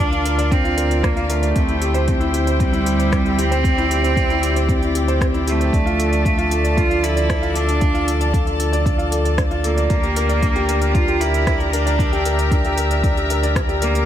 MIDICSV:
0, 0, Header, 1, 6, 480
1, 0, Start_track
1, 0, Key_signature, -1, "minor"
1, 0, Tempo, 521739
1, 1432, Time_signature, 4, 2, 24, 8
1, 12930, End_track
2, 0, Start_track
2, 0, Title_t, "String section"
2, 0, Program_c, 0, 48
2, 0, Note_on_c, 0, 62, 83
2, 0, Note_on_c, 0, 65, 79
2, 0, Note_on_c, 0, 70, 77
2, 0, Note_on_c, 0, 77, 95
2, 1395, Note_off_c, 0, 70, 0
2, 1396, Note_off_c, 0, 77, 0
2, 1397, Note_off_c, 0, 65, 0
2, 1398, Note_off_c, 0, 62, 0
2, 1431, Note_on_c, 0, 67, 78
2, 1431, Note_on_c, 0, 72, 76
2, 1432, Note_on_c, 0, 79, 95
2, 1433, Note_on_c, 0, 64, 85
2, 3332, Note_off_c, 0, 72, 0
2, 3351, Note_on_c, 0, 74, 78
2, 5235, Note_off_c, 0, 67, 0
2, 5235, Note_off_c, 0, 79, 0
2, 5236, Note_off_c, 0, 64, 0
2, 5252, Note_off_c, 0, 74, 0
2, 5266, Note_on_c, 0, 53, 81
2, 5267, Note_on_c, 0, 81, 92
2, 5268, Note_on_c, 0, 69, 73
2, 5268, Note_on_c, 0, 74, 78
2, 9072, Note_off_c, 0, 53, 0
2, 9073, Note_off_c, 0, 69, 0
2, 9073, Note_off_c, 0, 81, 0
2, 9110, Note_on_c, 0, 70, 78
2, 9111, Note_on_c, 0, 67, 87
2, 9114, Note_on_c, 0, 82, 92
2, 10993, Note_off_c, 0, 74, 0
2, 11028, Note_on_c, 0, 76, 79
2, 12915, Note_off_c, 0, 67, 0
2, 12930, Note_off_c, 0, 70, 0
2, 12930, Note_off_c, 0, 76, 0
2, 12930, Note_off_c, 0, 82, 0
2, 12930, End_track
3, 0, Start_track
3, 0, Title_t, "Grand piano"
3, 0, Program_c, 1, 0
3, 0, Control_c, 1, 64, 127
3, 0, Note_on_c, 1, 62, 80
3, 0, Note_on_c, 1, 65, 105
3, 0, Note_on_c, 1, 70, 74
3, 0, Note_on_c, 1, 74, 68
3, 106, Note_off_c, 1, 62, 0
3, 112, Note_off_c, 1, 65, 0
3, 112, Note_on_c, 1, 65, 80
3, 180, Note_off_c, 1, 65, 0
3, 231, Note_off_c, 1, 70, 0
3, 231, Note_on_c, 1, 70, 72
3, 300, Note_off_c, 1, 70, 0
3, 352, Note_off_c, 1, 74, 0
3, 352, Note_on_c, 1, 74, 98
3, 466, Note_off_c, 1, 74, 0
3, 472, Note_on_c, 1, 62, 82
3, 586, Note_off_c, 1, 62, 0
3, 590, Note_on_c, 1, 65, 95
3, 705, Note_off_c, 1, 65, 0
3, 708, Note_on_c, 1, 70, 76
3, 824, Note_off_c, 1, 70, 0
3, 825, Note_on_c, 1, 74, 79
3, 942, Note_off_c, 1, 74, 0
3, 947, Note_on_c, 1, 62, 87
3, 1018, Note_off_c, 1, 62, 0
3, 1067, Note_on_c, 1, 65, 99
3, 1184, Note_off_c, 1, 65, 0
3, 1191, Note_on_c, 1, 70, 79
3, 1260, Note_off_c, 1, 70, 0
3, 1310, Note_on_c, 1, 74, 78
3, 1425, Note_off_c, 1, 74, 0
3, 1430, Note_on_c, 1, 60, 87
3, 1446, Control_c, 1, 64, 0
3, 1545, Note_off_c, 1, 60, 0
3, 1553, Note_on_c, 1, 64, 81
3, 1613, Control_c, 1, 64, 127
3, 1621, Note_off_c, 1, 64, 0
3, 1671, Note_on_c, 1, 67, 82
3, 1740, Note_off_c, 1, 67, 0
3, 1788, Note_on_c, 1, 72, 92
3, 1904, Note_off_c, 1, 72, 0
3, 1912, Note_on_c, 1, 60, 77
3, 2026, Note_off_c, 1, 60, 0
3, 2028, Note_on_c, 1, 64, 102
3, 2144, Note_off_c, 1, 64, 0
3, 2150, Note_on_c, 1, 67, 71
3, 2265, Note_off_c, 1, 67, 0
3, 2270, Note_on_c, 1, 72, 75
3, 2385, Note_off_c, 1, 72, 0
3, 2388, Note_on_c, 1, 60, 82
3, 2458, Note_off_c, 1, 60, 0
3, 2508, Note_on_c, 1, 64, 100
3, 2624, Note_off_c, 1, 64, 0
3, 2630, Note_on_c, 1, 67, 76
3, 2700, Note_off_c, 1, 67, 0
3, 2752, Note_on_c, 1, 72, 77
3, 2866, Note_off_c, 1, 72, 0
3, 2868, Note_on_c, 1, 60, 86
3, 2984, Note_off_c, 1, 60, 0
3, 2992, Note_on_c, 1, 64, 75
3, 3060, Note_off_c, 1, 64, 0
3, 3112, Note_on_c, 1, 67, 83
3, 3181, Note_off_c, 1, 67, 0
3, 3232, Note_on_c, 1, 72, 101
3, 3346, Note_off_c, 1, 72, 0
3, 3356, Note_on_c, 1, 60, 84
3, 3468, Note_off_c, 1, 60, 0
3, 3476, Note_on_c, 1, 64, 105
3, 3588, Note_off_c, 1, 64, 0
3, 3594, Note_on_c, 1, 67, 79
3, 3707, Note_off_c, 1, 67, 0
3, 3711, Note_on_c, 1, 72, 74
3, 3826, Note_off_c, 1, 72, 0
3, 3833, Note_on_c, 1, 60, 80
3, 3901, Note_off_c, 1, 60, 0
3, 3956, Note_on_c, 1, 64, 104
3, 4068, Note_off_c, 1, 64, 0
3, 4073, Note_on_c, 1, 67, 75
3, 4141, Note_off_c, 1, 67, 0
3, 4194, Note_on_c, 1, 72, 73
3, 4307, Note_off_c, 1, 72, 0
3, 4316, Note_on_c, 1, 60, 84
3, 4428, Note_off_c, 1, 60, 0
3, 4435, Note_on_c, 1, 64, 77
3, 4502, Note_off_c, 1, 64, 0
3, 4554, Note_on_c, 1, 67, 75
3, 4622, Note_off_c, 1, 67, 0
3, 4675, Note_on_c, 1, 72, 99
3, 4788, Note_off_c, 1, 72, 0
3, 4796, Note_on_c, 1, 60, 88
3, 4908, Note_off_c, 1, 60, 0
3, 4914, Note_on_c, 1, 64, 100
3, 5027, Note_off_c, 1, 64, 0
3, 5031, Note_on_c, 1, 67, 79
3, 5146, Note_off_c, 1, 67, 0
3, 5152, Note_on_c, 1, 72, 80
3, 5266, Note_off_c, 1, 72, 0
3, 5268, Note_on_c, 1, 62, 88
3, 5286, Control_c, 1, 64, 0
3, 5384, Note_off_c, 1, 62, 0
3, 5388, Note_on_c, 1, 65, 101
3, 5422, Control_c, 1, 64, 127
3, 5504, Note_off_c, 1, 65, 0
3, 5508, Note_on_c, 1, 69, 76
3, 5624, Note_off_c, 1, 69, 0
3, 5625, Note_on_c, 1, 74, 70
3, 5743, Note_off_c, 1, 74, 0
3, 5750, Note_on_c, 1, 62, 79
3, 5820, Note_off_c, 1, 62, 0
3, 5868, Note_on_c, 1, 65, 102
3, 5984, Note_off_c, 1, 65, 0
3, 5989, Note_on_c, 1, 69, 75
3, 6059, Note_off_c, 1, 69, 0
3, 6110, Note_on_c, 1, 74, 76
3, 6225, Note_off_c, 1, 74, 0
3, 6231, Note_on_c, 1, 62, 76
3, 6346, Note_off_c, 1, 62, 0
3, 6346, Note_on_c, 1, 65, 76
3, 6417, Note_off_c, 1, 65, 0
3, 6467, Note_on_c, 1, 69, 74
3, 6538, Note_off_c, 1, 69, 0
3, 6591, Note_on_c, 1, 74, 102
3, 6706, Note_off_c, 1, 74, 0
3, 6825, Note_on_c, 1, 65, 105
3, 6943, Note_off_c, 1, 65, 0
3, 6947, Note_on_c, 1, 69, 82
3, 7063, Note_off_c, 1, 69, 0
3, 7065, Note_on_c, 1, 74, 74
3, 7182, Note_on_c, 1, 62, 91
3, 7183, Note_off_c, 1, 74, 0
3, 7255, Note_off_c, 1, 62, 0
3, 7306, Note_on_c, 1, 65, 106
3, 7423, Note_off_c, 1, 65, 0
3, 7424, Note_on_c, 1, 69, 81
3, 7497, Note_off_c, 1, 69, 0
3, 7550, Note_on_c, 1, 74, 78
3, 7664, Note_on_c, 1, 62, 77
3, 7665, Note_off_c, 1, 74, 0
3, 7782, Note_off_c, 1, 62, 0
3, 7788, Note_on_c, 1, 65, 75
3, 7858, Note_off_c, 1, 65, 0
3, 7909, Note_on_c, 1, 69, 77
3, 7979, Note_off_c, 1, 69, 0
3, 8028, Note_on_c, 1, 74, 101
3, 8144, Note_off_c, 1, 74, 0
3, 8144, Note_on_c, 1, 62, 81
3, 8262, Note_off_c, 1, 62, 0
3, 8262, Note_on_c, 1, 65, 93
3, 8381, Note_off_c, 1, 65, 0
3, 8383, Note_on_c, 1, 69, 78
3, 8502, Note_off_c, 1, 69, 0
3, 8504, Note_on_c, 1, 74, 80
3, 8622, Note_off_c, 1, 74, 0
3, 8624, Note_on_c, 1, 62, 84
3, 8697, Note_off_c, 1, 62, 0
3, 8748, Note_on_c, 1, 65, 104
3, 8864, Note_off_c, 1, 65, 0
3, 8867, Note_on_c, 1, 69, 83
3, 8938, Note_off_c, 1, 69, 0
3, 8985, Note_on_c, 1, 74, 84
3, 9102, Note_off_c, 1, 74, 0
3, 9106, Note_on_c, 1, 62, 89
3, 9124, Control_c, 1, 64, 0
3, 9223, Note_off_c, 1, 62, 0
3, 9227, Note_on_c, 1, 67, 76
3, 9298, Note_off_c, 1, 67, 0
3, 9306, Control_c, 1, 64, 127
3, 9353, Note_on_c, 1, 70, 81
3, 9421, Note_off_c, 1, 70, 0
3, 9468, Note_on_c, 1, 74, 98
3, 9584, Note_off_c, 1, 74, 0
3, 9592, Note_on_c, 1, 62, 83
3, 9706, Note_off_c, 1, 62, 0
3, 9712, Note_on_c, 1, 67, 110
3, 9826, Note_off_c, 1, 67, 0
3, 9833, Note_on_c, 1, 70, 78
3, 9947, Note_off_c, 1, 70, 0
3, 9953, Note_on_c, 1, 74, 74
3, 10067, Note_off_c, 1, 74, 0
3, 10076, Note_on_c, 1, 62, 85
3, 10142, Note_off_c, 1, 62, 0
3, 10196, Note_on_c, 1, 67, 100
3, 10308, Note_off_c, 1, 67, 0
3, 10318, Note_on_c, 1, 70, 74
3, 10383, Note_off_c, 1, 70, 0
3, 10438, Note_on_c, 1, 74, 78
3, 10549, Note_off_c, 1, 74, 0
3, 10557, Note_on_c, 1, 62, 85
3, 10668, Note_off_c, 1, 62, 0
3, 10678, Note_on_c, 1, 67, 77
3, 10744, Note_off_c, 1, 67, 0
3, 10795, Note_on_c, 1, 70, 85
3, 10862, Note_off_c, 1, 70, 0
3, 10912, Note_on_c, 1, 74, 98
3, 11026, Note_off_c, 1, 74, 0
3, 11034, Note_on_c, 1, 62, 81
3, 11147, Note_off_c, 1, 62, 0
3, 11155, Note_on_c, 1, 67, 106
3, 11268, Note_off_c, 1, 67, 0
3, 11279, Note_on_c, 1, 70, 81
3, 11390, Note_off_c, 1, 70, 0
3, 11401, Note_on_c, 1, 74, 72
3, 11511, Note_off_c, 1, 74, 0
3, 11524, Note_on_c, 1, 62, 77
3, 11587, Note_off_c, 1, 62, 0
3, 11642, Note_on_c, 1, 67, 101
3, 11751, Note_off_c, 1, 67, 0
3, 11762, Note_on_c, 1, 70, 80
3, 11826, Note_off_c, 1, 70, 0
3, 11881, Note_on_c, 1, 74, 75
3, 11990, Note_off_c, 1, 74, 0
3, 11996, Note_on_c, 1, 62, 82
3, 12108, Note_off_c, 1, 62, 0
3, 12118, Note_on_c, 1, 67, 72
3, 12184, Note_off_c, 1, 67, 0
3, 12239, Note_on_c, 1, 70, 76
3, 12304, Note_off_c, 1, 70, 0
3, 12357, Note_on_c, 1, 74, 102
3, 12469, Note_off_c, 1, 74, 0
3, 12474, Note_on_c, 1, 62, 82
3, 12587, Note_off_c, 1, 62, 0
3, 12591, Note_on_c, 1, 67, 94
3, 12706, Note_off_c, 1, 67, 0
3, 12715, Note_on_c, 1, 70, 80
3, 12827, Note_off_c, 1, 70, 0
3, 12834, Note_on_c, 1, 74, 73
3, 12930, Note_off_c, 1, 74, 0
3, 12930, End_track
4, 0, Start_track
4, 0, Title_t, "Cello"
4, 0, Program_c, 2, 42
4, 0, Note_on_c, 2, 62, 119
4, 475, Note_on_c, 2, 60, 106
4, 489, Note_off_c, 2, 62, 0
4, 946, Note_on_c, 2, 58, 90
4, 960, Note_off_c, 2, 60, 0
4, 1187, Note_on_c, 2, 57, 90
4, 1201, Note_off_c, 2, 58, 0
4, 2150, Note_off_c, 2, 57, 0
4, 2385, Note_on_c, 2, 55, 105
4, 3110, Note_on_c, 2, 60, 127
4, 3124, Note_off_c, 2, 55, 0
4, 4791, Note_off_c, 2, 60, 0
4, 5040, Note_on_c, 2, 57, 102
4, 6225, Note_on_c, 2, 65, 118
4, 6239, Note_off_c, 2, 57, 0
4, 6469, Note_on_c, 2, 64, 115
4, 6482, Note_off_c, 2, 65, 0
4, 6957, Note_on_c, 2, 62, 102
4, 6971, Note_off_c, 2, 64, 0
4, 7675, Note_off_c, 2, 62, 0
4, 8860, Note_on_c, 2, 58, 104
4, 10069, Note_on_c, 2, 65, 116
4, 10083, Note_off_c, 2, 58, 0
4, 10303, Note_on_c, 2, 64, 122
4, 10317, Note_off_c, 2, 65, 0
4, 10791, Note_on_c, 2, 62, 103
4, 10805, Note_off_c, 2, 64, 0
4, 11512, Note_off_c, 2, 62, 0
4, 12710, Note_on_c, 2, 58, 127
4, 12930, Note_off_c, 2, 58, 0
4, 12930, End_track
5, 0, Start_track
5, 0, Title_t, "Analog synth bass"
5, 0, Program_c, 3, 38
5, 0, Note_on_c, 3, 38, 88
5, 1409, Note_off_c, 3, 38, 0
5, 1435, Note_on_c, 3, 38, 91
5, 5249, Note_off_c, 3, 38, 0
5, 5274, Note_on_c, 3, 38, 93
5, 9089, Note_off_c, 3, 38, 0
5, 9108, Note_on_c, 3, 38, 89
5, 12926, Note_off_c, 3, 38, 0
5, 12930, End_track
6, 0, Start_track
6, 0, Title_t, "Drums"
6, 115, Note_on_c, 9, 42, 20
6, 207, Note_off_c, 9, 42, 0
6, 235, Note_on_c, 9, 42, 69
6, 327, Note_off_c, 9, 42, 0
6, 356, Note_on_c, 9, 42, 32
6, 448, Note_off_c, 9, 42, 0
6, 474, Note_on_c, 9, 36, 109
6, 477, Note_on_c, 9, 42, 41
6, 566, Note_off_c, 9, 36, 0
6, 569, Note_off_c, 9, 42, 0
6, 598, Note_on_c, 9, 42, 20
6, 690, Note_off_c, 9, 42, 0
6, 715, Note_on_c, 9, 42, 70
6, 807, Note_off_c, 9, 42, 0
6, 837, Note_on_c, 9, 42, 30
6, 929, Note_off_c, 9, 42, 0
6, 953, Note_on_c, 9, 36, 98
6, 957, Note_on_c, 9, 37, 76
6, 957, Note_on_c, 9, 42, 42
6, 1045, Note_off_c, 9, 36, 0
6, 1049, Note_off_c, 9, 37, 0
6, 1049, Note_off_c, 9, 42, 0
6, 1074, Note_on_c, 9, 42, 21
6, 1166, Note_off_c, 9, 42, 0
6, 1193, Note_on_c, 9, 42, 75
6, 1285, Note_off_c, 9, 42, 0
6, 1314, Note_on_c, 9, 42, 30
6, 1406, Note_off_c, 9, 42, 0
6, 1432, Note_on_c, 9, 42, 44
6, 1433, Note_on_c, 9, 36, 98
6, 1524, Note_off_c, 9, 42, 0
6, 1525, Note_off_c, 9, 36, 0
6, 1550, Note_on_c, 9, 42, 19
6, 1642, Note_off_c, 9, 42, 0
6, 1671, Note_on_c, 9, 42, 71
6, 1763, Note_off_c, 9, 42, 0
6, 1789, Note_on_c, 9, 42, 29
6, 1881, Note_off_c, 9, 42, 0
6, 1911, Note_on_c, 9, 42, 40
6, 1914, Note_on_c, 9, 36, 96
6, 2003, Note_off_c, 9, 42, 0
6, 2006, Note_off_c, 9, 36, 0
6, 2031, Note_on_c, 9, 42, 20
6, 2123, Note_off_c, 9, 42, 0
6, 2153, Note_on_c, 9, 42, 67
6, 2245, Note_off_c, 9, 42, 0
6, 2275, Note_on_c, 9, 42, 33
6, 2367, Note_off_c, 9, 42, 0
6, 2393, Note_on_c, 9, 36, 109
6, 2393, Note_on_c, 9, 42, 42
6, 2485, Note_off_c, 9, 36, 0
6, 2485, Note_off_c, 9, 42, 0
6, 2516, Note_on_c, 9, 42, 22
6, 2608, Note_off_c, 9, 42, 0
6, 2635, Note_on_c, 9, 42, 69
6, 2727, Note_off_c, 9, 42, 0
6, 2757, Note_on_c, 9, 42, 31
6, 2849, Note_off_c, 9, 42, 0
6, 2872, Note_on_c, 9, 36, 100
6, 2875, Note_on_c, 9, 37, 73
6, 2875, Note_on_c, 9, 42, 43
6, 2964, Note_off_c, 9, 36, 0
6, 2967, Note_off_c, 9, 37, 0
6, 2967, Note_off_c, 9, 42, 0
6, 2997, Note_on_c, 9, 42, 19
6, 3089, Note_off_c, 9, 42, 0
6, 3116, Note_on_c, 9, 42, 74
6, 3208, Note_off_c, 9, 42, 0
6, 3237, Note_on_c, 9, 42, 31
6, 3329, Note_off_c, 9, 42, 0
6, 3351, Note_on_c, 9, 36, 97
6, 3357, Note_on_c, 9, 42, 44
6, 3443, Note_off_c, 9, 36, 0
6, 3449, Note_off_c, 9, 42, 0
6, 3480, Note_on_c, 9, 42, 20
6, 3572, Note_off_c, 9, 42, 0
6, 3598, Note_on_c, 9, 42, 73
6, 3690, Note_off_c, 9, 42, 0
6, 3720, Note_on_c, 9, 42, 30
6, 3812, Note_off_c, 9, 42, 0
6, 3832, Note_on_c, 9, 36, 104
6, 3838, Note_on_c, 9, 42, 42
6, 3924, Note_off_c, 9, 36, 0
6, 3930, Note_off_c, 9, 42, 0
6, 3958, Note_on_c, 9, 42, 21
6, 4050, Note_off_c, 9, 42, 0
6, 4076, Note_on_c, 9, 42, 68
6, 4168, Note_off_c, 9, 42, 0
6, 4199, Note_on_c, 9, 42, 32
6, 4291, Note_off_c, 9, 42, 0
6, 4311, Note_on_c, 9, 36, 104
6, 4317, Note_on_c, 9, 42, 41
6, 4403, Note_off_c, 9, 36, 0
6, 4409, Note_off_c, 9, 42, 0
6, 4439, Note_on_c, 9, 42, 20
6, 4531, Note_off_c, 9, 42, 0
6, 4556, Note_on_c, 9, 42, 73
6, 4648, Note_off_c, 9, 42, 0
6, 4677, Note_on_c, 9, 42, 29
6, 4769, Note_off_c, 9, 42, 0
6, 4792, Note_on_c, 9, 36, 97
6, 4798, Note_on_c, 9, 37, 80
6, 4798, Note_on_c, 9, 42, 42
6, 4884, Note_off_c, 9, 36, 0
6, 4890, Note_off_c, 9, 37, 0
6, 4890, Note_off_c, 9, 42, 0
6, 4916, Note_on_c, 9, 42, 21
6, 5008, Note_off_c, 9, 42, 0
6, 5037, Note_on_c, 9, 42, 71
6, 5129, Note_off_c, 9, 42, 0
6, 5160, Note_on_c, 9, 42, 30
6, 5252, Note_off_c, 9, 42, 0
6, 5273, Note_on_c, 9, 36, 105
6, 5279, Note_on_c, 9, 42, 41
6, 5365, Note_off_c, 9, 36, 0
6, 5371, Note_off_c, 9, 42, 0
6, 5400, Note_on_c, 9, 42, 21
6, 5492, Note_off_c, 9, 42, 0
6, 5517, Note_on_c, 9, 42, 75
6, 5609, Note_off_c, 9, 42, 0
6, 5637, Note_on_c, 9, 42, 30
6, 5729, Note_off_c, 9, 42, 0
6, 5752, Note_on_c, 9, 36, 97
6, 5757, Note_on_c, 9, 42, 41
6, 5844, Note_off_c, 9, 36, 0
6, 5849, Note_off_c, 9, 42, 0
6, 5875, Note_on_c, 9, 42, 23
6, 5967, Note_off_c, 9, 42, 0
6, 5993, Note_on_c, 9, 42, 72
6, 6085, Note_off_c, 9, 42, 0
6, 6115, Note_on_c, 9, 42, 33
6, 6207, Note_off_c, 9, 42, 0
6, 6232, Note_on_c, 9, 36, 112
6, 6234, Note_on_c, 9, 42, 45
6, 6324, Note_off_c, 9, 36, 0
6, 6326, Note_off_c, 9, 42, 0
6, 6357, Note_on_c, 9, 42, 22
6, 6449, Note_off_c, 9, 42, 0
6, 6475, Note_on_c, 9, 42, 69
6, 6567, Note_off_c, 9, 42, 0
6, 6596, Note_on_c, 9, 42, 29
6, 6688, Note_off_c, 9, 42, 0
6, 6711, Note_on_c, 9, 36, 97
6, 6714, Note_on_c, 9, 37, 78
6, 6714, Note_on_c, 9, 42, 42
6, 6803, Note_off_c, 9, 36, 0
6, 6806, Note_off_c, 9, 37, 0
6, 6806, Note_off_c, 9, 42, 0
6, 6835, Note_on_c, 9, 42, 21
6, 6927, Note_off_c, 9, 42, 0
6, 6951, Note_on_c, 9, 42, 76
6, 7043, Note_off_c, 9, 42, 0
6, 7071, Note_on_c, 9, 42, 34
6, 7163, Note_off_c, 9, 42, 0
6, 7188, Note_on_c, 9, 42, 44
6, 7190, Note_on_c, 9, 36, 114
6, 7280, Note_off_c, 9, 42, 0
6, 7282, Note_off_c, 9, 36, 0
6, 7312, Note_on_c, 9, 42, 20
6, 7404, Note_off_c, 9, 42, 0
6, 7433, Note_on_c, 9, 42, 75
6, 7525, Note_off_c, 9, 42, 0
6, 7552, Note_on_c, 9, 42, 33
6, 7644, Note_off_c, 9, 42, 0
6, 7670, Note_on_c, 9, 36, 111
6, 7674, Note_on_c, 9, 42, 47
6, 7762, Note_off_c, 9, 36, 0
6, 7766, Note_off_c, 9, 42, 0
6, 7793, Note_on_c, 9, 42, 21
6, 7885, Note_off_c, 9, 42, 0
6, 7911, Note_on_c, 9, 42, 72
6, 8003, Note_off_c, 9, 42, 0
6, 8034, Note_on_c, 9, 42, 35
6, 8126, Note_off_c, 9, 42, 0
6, 8149, Note_on_c, 9, 36, 112
6, 8155, Note_on_c, 9, 42, 43
6, 8241, Note_off_c, 9, 36, 0
6, 8247, Note_off_c, 9, 42, 0
6, 8274, Note_on_c, 9, 42, 22
6, 8366, Note_off_c, 9, 42, 0
6, 8392, Note_on_c, 9, 42, 75
6, 8484, Note_off_c, 9, 42, 0
6, 8514, Note_on_c, 9, 42, 32
6, 8606, Note_off_c, 9, 42, 0
6, 8629, Note_on_c, 9, 36, 100
6, 8630, Note_on_c, 9, 37, 84
6, 8630, Note_on_c, 9, 42, 46
6, 8721, Note_off_c, 9, 36, 0
6, 8722, Note_off_c, 9, 37, 0
6, 8722, Note_off_c, 9, 42, 0
6, 8750, Note_on_c, 9, 42, 20
6, 8842, Note_off_c, 9, 42, 0
6, 8871, Note_on_c, 9, 42, 79
6, 8963, Note_off_c, 9, 42, 0
6, 8994, Note_on_c, 9, 42, 34
6, 9086, Note_off_c, 9, 42, 0
6, 9108, Note_on_c, 9, 42, 46
6, 9110, Note_on_c, 9, 36, 111
6, 9200, Note_off_c, 9, 42, 0
6, 9202, Note_off_c, 9, 36, 0
6, 9231, Note_on_c, 9, 42, 22
6, 9323, Note_off_c, 9, 42, 0
6, 9351, Note_on_c, 9, 42, 80
6, 9443, Note_off_c, 9, 42, 0
6, 9470, Note_on_c, 9, 42, 31
6, 9562, Note_off_c, 9, 42, 0
6, 9590, Note_on_c, 9, 36, 106
6, 9592, Note_on_c, 9, 42, 44
6, 9682, Note_off_c, 9, 36, 0
6, 9684, Note_off_c, 9, 42, 0
6, 9713, Note_on_c, 9, 42, 22
6, 9805, Note_off_c, 9, 42, 0
6, 9833, Note_on_c, 9, 42, 77
6, 9925, Note_off_c, 9, 42, 0
6, 9950, Note_on_c, 9, 42, 36
6, 10042, Note_off_c, 9, 42, 0
6, 10071, Note_on_c, 9, 36, 119
6, 10072, Note_on_c, 9, 42, 45
6, 10163, Note_off_c, 9, 36, 0
6, 10164, Note_off_c, 9, 42, 0
6, 10195, Note_on_c, 9, 42, 22
6, 10287, Note_off_c, 9, 42, 0
6, 10314, Note_on_c, 9, 42, 75
6, 10406, Note_off_c, 9, 42, 0
6, 10434, Note_on_c, 9, 42, 34
6, 10526, Note_off_c, 9, 42, 0
6, 10551, Note_on_c, 9, 36, 108
6, 10553, Note_on_c, 9, 37, 75
6, 10553, Note_on_c, 9, 42, 49
6, 10643, Note_off_c, 9, 36, 0
6, 10645, Note_off_c, 9, 37, 0
6, 10645, Note_off_c, 9, 42, 0
6, 10675, Note_on_c, 9, 42, 21
6, 10767, Note_off_c, 9, 42, 0
6, 10795, Note_on_c, 9, 42, 82
6, 10887, Note_off_c, 9, 42, 0
6, 10918, Note_on_c, 9, 42, 34
6, 11010, Note_off_c, 9, 42, 0
6, 11031, Note_on_c, 9, 36, 111
6, 11038, Note_on_c, 9, 42, 42
6, 11123, Note_off_c, 9, 36, 0
6, 11130, Note_off_c, 9, 42, 0
6, 11158, Note_on_c, 9, 42, 21
6, 11250, Note_off_c, 9, 42, 0
6, 11274, Note_on_c, 9, 42, 75
6, 11366, Note_off_c, 9, 42, 0
6, 11397, Note_on_c, 9, 42, 33
6, 11489, Note_off_c, 9, 42, 0
6, 11512, Note_on_c, 9, 36, 106
6, 11516, Note_on_c, 9, 42, 44
6, 11604, Note_off_c, 9, 36, 0
6, 11608, Note_off_c, 9, 42, 0
6, 11634, Note_on_c, 9, 42, 22
6, 11726, Note_off_c, 9, 42, 0
6, 11753, Note_on_c, 9, 42, 76
6, 11845, Note_off_c, 9, 42, 0
6, 11875, Note_on_c, 9, 42, 34
6, 11967, Note_off_c, 9, 42, 0
6, 11992, Note_on_c, 9, 36, 114
6, 11995, Note_on_c, 9, 42, 43
6, 12084, Note_off_c, 9, 36, 0
6, 12087, Note_off_c, 9, 42, 0
6, 12119, Note_on_c, 9, 42, 22
6, 12211, Note_off_c, 9, 42, 0
6, 12238, Note_on_c, 9, 42, 72
6, 12330, Note_off_c, 9, 42, 0
6, 12358, Note_on_c, 9, 42, 34
6, 12450, Note_off_c, 9, 42, 0
6, 12472, Note_on_c, 9, 36, 111
6, 12477, Note_on_c, 9, 37, 76
6, 12477, Note_on_c, 9, 42, 47
6, 12564, Note_off_c, 9, 36, 0
6, 12569, Note_off_c, 9, 37, 0
6, 12569, Note_off_c, 9, 42, 0
6, 12595, Note_on_c, 9, 42, 23
6, 12687, Note_off_c, 9, 42, 0
6, 12714, Note_on_c, 9, 42, 81
6, 12806, Note_off_c, 9, 42, 0
6, 12835, Note_on_c, 9, 42, 33
6, 12927, Note_off_c, 9, 42, 0
6, 12930, End_track
0, 0, End_of_file